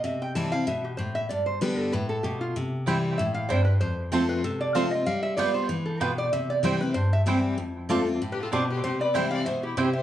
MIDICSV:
0, 0, Header, 1, 5, 480
1, 0, Start_track
1, 0, Key_signature, 0, "major"
1, 0, Tempo, 314136
1, 61, Time_signature, 4, 2, 24, 8
1, 15320, End_track
2, 0, Start_track
2, 0, Title_t, "Resonator guitar played with a steel bar"
2, 0, Program_c, 0, 25
2, 71, Note_on_c, 0, 76, 81
2, 319, Note_off_c, 0, 76, 0
2, 333, Note_on_c, 0, 79, 97
2, 531, Note_off_c, 0, 79, 0
2, 537, Note_on_c, 0, 81, 104
2, 790, Note_on_c, 0, 77, 106
2, 791, Note_off_c, 0, 81, 0
2, 1009, Note_off_c, 0, 77, 0
2, 1034, Note_on_c, 0, 76, 76
2, 1280, Note_off_c, 0, 76, 0
2, 1288, Note_on_c, 0, 67, 47
2, 1484, Note_on_c, 0, 72, 76
2, 1499, Note_off_c, 0, 67, 0
2, 1745, Note_off_c, 0, 72, 0
2, 1756, Note_on_c, 0, 76, 95
2, 1968, Note_off_c, 0, 76, 0
2, 1974, Note_on_c, 0, 74, 71
2, 2225, Note_off_c, 0, 74, 0
2, 2231, Note_on_c, 0, 72, 76
2, 2450, Note_off_c, 0, 72, 0
2, 2468, Note_on_c, 0, 71, 82
2, 2745, Note_off_c, 0, 71, 0
2, 2745, Note_on_c, 0, 69, 78
2, 2940, Note_on_c, 0, 71, 93
2, 2947, Note_off_c, 0, 69, 0
2, 3188, Note_off_c, 0, 71, 0
2, 3194, Note_on_c, 0, 69, 79
2, 3409, Note_on_c, 0, 67, 76
2, 3411, Note_off_c, 0, 69, 0
2, 3667, Note_off_c, 0, 67, 0
2, 3679, Note_on_c, 0, 65, 75
2, 3894, Note_off_c, 0, 65, 0
2, 4855, Note_on_c, 0, 76, 77
2, 5104, Note_off_c, 0, 76, 0
2, 5110, Note_on_c, 0, 77, 91
2, 5326, Note_on_c, 0, 74, 76
2, 5329, Note_off_c, 0, 77, 0
2, 5570, Note_on_c, 0, 71, 80
2, 5586, Note_off_c, 0, 74, 0
2, 5799, Note_off_c, 0, 71, 0
2, 5814, Note_on_c, 0, 72, 86
2, 6549, Note_off_c, 0, 72, 0
2, 6555, Note_on_c, 0, 71, 80
2, 6772, Note_off_c, 0, 71, 0
2, 6785, Note_on_c, 0, 69, 72
2, 7036, Note_off_c, 0, 69, 0
2, 7038, Note_on_c, 0, 74, 89
2, 7254, Note_off_c, 0, 74, 0
2, 7256, Note_on_c, 0, 77, 94
2, 7501, Note_on_c, 0, 75, 93
2, 7511, Note_off_c, 0, 77, 0
2, 7725, Note_off_c, 0, 75, 0
2, 7735, Note_on_c, 0, 77, 96
2, 7980, Note_off_c, 0, 77, 0
2, 7987, Note_on_c, 0, 76, 97
2, 8195, Note_off_c, 0, 76, 0
2, 8201, Note_on_c, 0, 74, 84
2, 8463, Note_off_c, 0, 74, 0
2, 8469, Note_on_c, 0, 72, 88
2, 8689, Note_off_c, 0, 72, 0
2, 8695, Note_on_c, 0, 71, 71
2, 8948, Note_on_c, 0, 69, 78
2, 8951, Note_off_c, 0, 71, 0
2, 9179, Note_off_c, 0, 69, 0
2, 9179, Note_on_c, 0, 71, 76
2, 9434, Note_off_c, 0, 71, 0
2, 9446, Note_on_c, 0, 74, 91
2, 9659, Note_off_c, 0, 74, 0
2, 9666, Note_on_c, 0, 76, 94
2, 9917, Note_off_c, 0, 76, 0
2, 9930, Note_on_c, 0, 74, 91
2, 10141, Note_off_c, 0, 74, 0
2, 10157, Note_on_c, 0, 72, 76
2, 10393, Note_off_c, 0, 72, 0
2, 10399, Note_on_c, 0, 71, 92
2, 10601, Note_off_c, 0, 71, 0
2, 10607, Note_on_c, 0, 72, 90
2, 10867, Note_off_c, 0, 72, 0
2, 10892, Note_on_c, 0, 76, 101
2, 11022, Note_off_c, 0, 76, 0
2, 12716, Note_on_c, 0, 71, 82
2, 12865, Note_off_c, 0, 71, 0
2, 12878, Note_on_c, 0, 69, 67
2, 13026, Note_off_c, 0, 69, 0
2, 13032, Note_on_c, 0, 67, 80
2, 13279, Note_off_c, 0, 67, 0
2, 13300, Note_on_c, 0, 71, 79
2, 13497, Note_off_c, 0, 71, 0
2, 13503, Note_on_c, 0, 72, 87
2, 13754, Note_off_c, 0, 72, 0
2, 13765, Note_on_c, 0, 74, 93
2, 13969, Note_off_c, 0, 74, 0
2, 13975, Note_on_c, 0, 76, 82
2, 14215, Note_off_c, 0, 76, 0
2, 14221, Note_on_c, 0, 77, 106
2, 14443, Note_off_c, 0, 77, 0
2, 14449, Note_on_c, 0, 76, 83
2, 14706, Note_off_c, 0, 76, 0
2, 14719, Note_on_c, 0, 67, 61
2, 14932, Note_off_c, 0, 67, 0
2, 14939, Note_on_c, 0, 72, 77
2, 15178, Note_on_c, 0, 76, 84
2, 15190, Note_off_c, 0, 72, 0
2, 15320, Note_off_c, 0, 76, 0
2, 15320, End_track
3, 0, Start_track
3, 0, Title_t, "Mandolin"
3, 0, Program_c, 1, 25
3, 4372, Note_on_c, 1, 60, 82
3, 4384, Note_on_c, 1, 64, 88
3, 4386, Note_on_c, 1, 72, 86
3, 4395, Note_on_c, 1, 79, 100
3, 4527, Note_off_c, 1, 60, 0
3, 4532, Note_off_c, 1, 64, 0
3, 4533, Note_off_c, 1, 72, 0
3, 4538, Note_off_c, 1, 79, 0
3, 5330, Note_on_c, 1, 60, 90
3, 5343, Note_on_c, 1, 64, 99
3, 5348, Note_on_c, 1, 72, 95
3, 5348, Note_on_c, 1, 79, 92
3, 5486, Note_off_c, 1, 60, 0
3, 5492, Note_off_c, 1, 64, 0
3, 5494, Note_off_c, 1, 72, 0
3, 5495, Note_off_c, 1, 79, 0
3, 6294, Note_on_c, 1, 60, 80
3, 6307, Note_on_c, 1, 65, 90
3, 6312, Note_on_c, 1, 72, 98
3, 6318, Note_on_c, 1, 81, 95
3, 6447, Note_off_c, 1, 60, 0
3, 6454, Note_off_c, 1, 65, 0
3, 6457, Note_off_c, 1, 72, 0
3, 6460, Note_off_c, 1, 81, 0
3, 7252, Note_on_c, 1, 60, 94
3, 7263, Note_on_c, 1, 72, 99
3, 7265, Note_on_c, 1, 65, 98
3, 7266, Note_on_c, 1, 81, 96
3, 7407, Note_off_c, 1, 60, 0
3, 7412, Note_off_c, 1, 72, 0
3, 7413, Note_off_c, 1, 65, 0
3, 7414, Note_off_c, 1, 81, 0
3, 8221, Note_on_c, 1, 59, 86
3, 8226, Note_on_c, 1, 65, 85
3, 8232, Note_on_c, 1, 71, 100
3, 8238, Note_on_c, 1, 79, 95
3, 8372, Note_off_c, 1, 59, 0
3, 8374, Note_off_c, 1, 65, 0
3, 8377, Note_off_c, 1, 71, 0
3, 8380, Note_off_c, 1, 79, 0
3, 9171, Note_on_c, 1, 59, 83
3, 9181, Note_on_c, 1, 65, 94
3, 9184, Note_on_c, 1, 71, 95
3, 9189, Note_on_c, 1, 79, 94
3, 9327, Note_off_c, 1, 59, 0
3, 9332, Note_off_c, 1, 65, 0
3, 9333, Note_off_c, 1, 71, 0
3, 9336, Note_off_c, 1, 79, 0
3, 10144, Note_on_c, 1, 60, 84
3, 10150, Note_on_c, 1, 64, 82
3, 10157, Note_on_c, 1, 72, 91
3, 10161, Note_on_c, 1, 79, 107
3, 10294, Note_off_c, 1, 60, 0
3, 10297, Note_off_c, 1, 64, 0
3, 10300, Note_off_c, 1, 72, 0
3, 10303, Note_off_c, 1, 79, 0
3, 11104, Note_on_c, 1, 60, 84
3, 11107, Note_on_c, 1, 64, 89
3, 11111, Note_on_c, 1, 72, 92
3, 11119, Note_on_c, 1, 79, 100
3, 11254, Note_off_c, 1, 60, 0
3, 11255, Note_off_c, 1, 64, 0
3, 11258, Note_off_c, 1, 72, 0
3, 11262, Note_off_c, 1, 79, 0
3, 12059, Note_on_c, 1, 60, 87
3, 12063, Note_on_c, 1, 65, 90
3, 12070, Note_on_c, 1, 74, 91
3, 12075, Note_on_c, 1, 81, 98
3, 12211, Note_off_c, 1, 60, 0
3, 12213, Note_off_c, 1, 65, 0
3, 12217, Note_off_c, 1, 74, 0
3, 12219, Note_off_c, 1, 81, 0
3, 13018, Note_on_c, 1, 60, 99
3, 13025, Note_on_c, 1, 65, 92
3, 13029, Note_on_c, 1, 74, 96
3, 13034, Note_on_c, 1, 81, 105
3, 13170, Note_off_c, 1, 60, 0
3, 13174, Note_off_c, 1, 65, 0
3, 13176, Note_off_c, 1, 74, 0
3, 13178, Note_off_c, 1, 81, 0
3, 13963, Note_on_c, 1, 60, 85
3, 13971, Note_on_c, 1, 64, 91
3, 13976, Note_on_c, 1, 72, 102
3, 13980, Note_on_c, 1, 79, 98
3, 14121, Note_off_c, 1, 60, 0
3, 14126, Note_off_c, 1, 64, 0
3, 14128, Note_off_c, 1, 72, 0
3, 14130, Note_off_c, 1, 79, 0
3, 14931, Note_on_c, 1, 60, 97
3, 14938, Note_on_c, 1, 64, 101
3, 14943, Note_on_c, 1, 72, 90
3, 14946, Note_on_c, 1, 79, 101
3, 15085, Note_off_c, 1, 60, 0
3, 15088, Note_off_c, 1, 64, 0
3, 15090, Note_off_c, 1, 72, 0
3, 15092, Note_off_c, 1, 79, 0
3, 15320, End_track
4, 0, Start_track
4, 0, Title_t, "Fiddle"
4, 0, Program_c, 2, 110
4, 12711, Note_on_c, 2, 67, 77
4, 12865, Note_on_c, 2, 65, 60
4, 12888, Note_off_c, 2, 67, 0
4, 13024, Note_off_c, 2, 65, 0
4, 13035, Note_on_c, 2, 62, 64
4, 13271, Note_off_c, 2, 62, 0
4, 13298, Note_on_c, 2, 67, 67
4, 13509, Note_off_c, 2, 67, 0
4, 13509, Note_on_c, 2, 67, 66
4, 13758, Note_off_c, 2, 67, 0
4, 13767, Note_on_c, 2, 71, 75
4, 13969, Note_off_c, 2, 71, 0
4, 13979, Note_on_c, 2, 72, 64
4, 14221, Note_off_c, 2, 72, 0
4, 14255, Note_on_c, 2, 74, 86
4, 14453, Note_off_c, 2, 74, 0
4, 14466, Note_on_c, 2, 72, 66
4, 14704, Note_off_c, 2, 72, 0
4, 14745, Note_on_c, 2, 64, 52
4, 14938, Note_off_c, 2, 64, 0
4, 14953, Note_on_c, 2, 67, 66
4, 15188, Note_off_c, 2, 67, 0
4, 15218, Note_on_c, 2, 72, 69
4, 15320, Note_off_c, 2, 72, 0
4, 15320, End_track
5, 0, Start_track
5, 0, Title_t, "Steel-string acoustic guitar"
5, 0, Program_c, 3, 25
5, 58, Note_on_c, 3, 48, 84
5, 540, Note_on_c, 3, 52, 88
5, 543, Note_on_c, 3, 55, 85
5, 554, Note_on_c, 3, 60, 97
5, 559, Note_on_c, 3, 64, 99
5, 773, Note_off_c, 3, 64, 0
5, 790, Note_off_c, 3, 52, 0
5, 791, Note_on_c, 3, 64, 61
5, 792, Note_off_c, 3, 55, 0
5, 797, Note_off_c, 3, 60, 0
5, 814, Note_on_c, 3, 60, 50
5, 976, Note_off_c, 3, 48, 0
5, 1008, Note_off_c, 3, 64, 0
5, 1019, Note_off_c, 3, 60, 0
5, 1023, Note_on_c, 3, 47, 92
5, 1480, Note_off_c, 3, 47, 0
5, 1505, Note_on_c, 3, 45, 83
5, 1961, Note_off_c, 3, 45, 0
5, 1994, Note_on_c, 3, 43, 80
5, 2462, Note_on_c, 3, 50, 93
5, 2468, Note_on_c, 3, 55, 93
5, 2477, Note_on_c, 3, 59, 94
5, 2488, Note_on_c, 3, 67, 98
5, 2904, Note_off_c, 3, 43, 0
5, 2920, Note_off_c, 3, 50, 0
5, 2922, Note_off_c, 3, 55, 0
5, 2927, Note_off_c, 3, 59, 0
5, 2933, Note_off_c, 3, 67, 0
5, 2953, Note_on_c, 3, 45, 89
5, 3405, Note_off_c, 3, 45, 0
5, 3425, Note_on_c, 3, 47, 83
5, 3881, Note_off_c, 3, 47, 0
5, 3912, Note_on_c, 3, 48, 87
5, 4385, Note_on_c, 3, 52, 89
5, 4395, Note_on_c, 3, 55, 83
5, 4404, Note_on_c, 3, 60, 95
5, 4405, Note_on_c, 3, 64, 94
5, 4823, Note_off_c, 3, 48, 0
5, 4841, Note_off_c, 3, 52, 0
5, 4846, Note_off_c, 3, 55, 0
5, 4851, Note_off_c, 3, 60, 0
5, 4851, Note_off_c, 3, 64, 0
5, 4878, Note_on_c, 3, 45, 96
5, 5328, Note_off_c, 3, 45, 0
5, 5348, Note_on_c, 3, 43, 87
5, 5803, Note_off_c, 3, 43, 0
5, 5820, Note_on_c, 3, 41, 78
5, 6291, Note_on_c, 3, 53, 85
5, 6298, Note_on_c, 3, 57, 94
5, 6303, Note_on_c, 3, 60, 99
5, 6314, Note_on_c, 3, 65, 103
5, 6737, Note_off_c, 3, 41, 0
5, 6755, Note_off_c, 3, 53, 0
5, 6758, Note_off_c, 3, 57, 0
5, 6761, Note_off_c, 3, 60, 0
5, 6766, Note_off_c, 3, 65, 0
5, 6786, Note_on_c, 3, 48, 88
5, 7258, Note_on_c, 3, 53, 85
5, 7268, Note_on_c, 3, 57, 86
5, 7276, Note_on_c, 3, 60, 92
5, 7280, Note_on_c, 3, 65, 99
5, 7502, Note_off_c, 3, 65, 0
5, 7510, Note_off_c, 3, 53, 0
5, 7515, Note_off_c, 3, 57, 0
5, 7518, Note_off_c, 3, 60, 0
5, 7521, Note_on_c, 3, 65, 58
5, 7547, Note_on_c, 3, 60, 50
5, 7701, Note_off_c, 3, 48, 0
5, 7733, Note_off_c, 3, 65, 0
5, 7739, Note_on_c, 3, 55, 90
5, 7746, Note_off_c, 3, 60, 0
5, 8196, Note_off_c, 3, 55, 0
5, 8214, Note_on_c, 3, 55, 94
5, 8227, Note_on_c, 3, 59, 95
5, 8236, Note_on_c, 3, 65, 99
5, 8677, Note_off_c, 3, 55, 0
5, 8683, Note_off_c, 3, 59, 0
5, 8688, Note_off_c, 3, 65, 0
5, 8694, Note_on_c, 3, 52, 89
5, 9157, Note_off_c, 3, 52, 0
5, 9183, Note_on_c, 3, 47, 88
5, 9642, Note_off_c, 3, 47, 0
5, 9670, Note_on_c, 3, 48, 85
5, 10130, Note_on_c, 3, 52, 97
5, 10141, Note_on_c, 3, 55, 98
5, 10149, Note_on_c, 3, 60, 86
5, 10158, Note_on_c, 3, 64, 97
5, 10384, Note_off_c, 3, 64, 0
5, 10386, Note_off_c, 3, 52, 0
5, 10392, Note_off_c, 3, 55, 0
5, 10396, Note_off_c, 3, 60, 0
5, 10402, Note_on_c, 3, 64, 53
5, 10427, Note_on_c, 3, 60, 54
5, 10583, Note_off_c, 3, 48, 0
5, 10610, Note_on_c, 3, 43, 97
5, 10615, Note_off_c, 3, 64, 0
5, 10627, Note_off_c, 3, 60, 0
5, 11092, Note_on_c, 3, 52, 82
5, 11099, Note_on_c, 3, 55, 92
5, 11104, Note_on_c, 3, 60, 100
5, 11114, Note_on_c, 3, 64, 92
5, 11533, Note_off_c, 3, 43, 0
5, 11556, Note_off_c, 3, 52, 0
5, 11560, Note_off_c, 3, 55, 0
5, 11562, Note_off_c, 3, 60, 0
5, 11567, Note_off_c, 3, 64, 0
5, 11577, Note_on_c, 3, 41, 80
5, 12054, Note_on_c, 3, 50, 84
5, 12065, Note_on_c, 3, 57, 95
5, 12073, Note_on_c, 3, 60, 95
5, 12079, Note_on_c, 3, 65, 98
5, 12305, Note_off_c, 3, 65, 0
5, 12308, Note_off_c, 3, 50, 0
5, 12314, Note_off_c, 3, 57, 0
5, 12318, Note_off_c, 3, 60, 0
5, 12324, Note_on_c, 3, 65, 53
5, 12349, Note_on_c, 3, 60, 48
5, 12496, Note_off_c, 3, 41, 0
5, 12535, Note_off_c, 3, 65, 0
5, 12548, Note_off_c, 3, 60, 0
5, 12555, Note_on_c, 3, 45, 91
5, 13007, Note_off_c, 3, 45, 0
5, 13028, Note_on_c, 3, 47, 87
5, 13483, Note_off_c, 3, 47, 0
5, 13504, Note_on_c, 3, 48, 86
5, 13977, Note_on_c, 3, 52, 93
5, 13986, Note_on_c, 3, 55, 91
5, 13992, Note_on_c, 3, 60, 89
5, 14001, Note_on_c, 3, 64, 103
5, 14417, Note_off_c, 3, 48, 0
5, 14436, Note_off_c, 3, 52, 0
5, 14441, Note_off_c, 3, 55, 0
5, 14444, Note_off_c, 3, 60, 0
5, 14448, Note_off_c, 3, 64, 0
5, 14457, Note_on_c, 3, 47, 93
5, 14916, Note_off_c, 3, 47, 0
5, 14930, Note_on_c, 3, 48, 89
5, 15320, Note_off_c, 3, 48, 0
5, 15320, End_track
0, 0, End_of_file